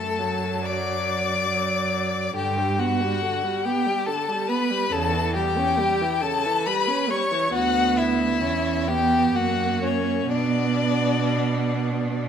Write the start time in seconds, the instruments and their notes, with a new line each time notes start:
Already playing: cello F#2, viola A3, violin A4 A5
0.19 viola F#3
0.66 violin D5 D6
1.52 viola F#3
2.35 cello G2, viola D3, violin G4 G5
2.58 viola G3
2.79 viola B3, violin F#4 F#5
3.01 viola G3
3.22 viola D3
3.44 viola G3
3.65 viola B3, violin G4 G5
3.86 viola G3
4.07 viola D3, violin A4 A5
4.29 viola G3
4.49 viola B3, violin B4 B5
4.70 viola G3
4.91 cello E2, viola C#3, violin A4 A5
5.14 viola E3
5.34 viola G3, violin G4 G5
5.58 viola C#4
5.79 viola G3
6.01 viola E3
6.21 viola C#3, violin A4 A5
6.46 viola E3
6.66 viola G3, violin B4 B5
6.88 viola C#4
7.10 viola G3, violin C#5 C#6
7.32 viola E3
7.53 cello D2, viola B3, violin F#4 F#5
7.97 violin E4 E5
8.41 cello E2, viola C#4
8.87 viola B3, violin G4 G5
9.34 cello F#2, viola A#3, violin F#4 F#5
9.83 violin C#4 C#5
10.31 cello B2, viola B3, violin D4 D5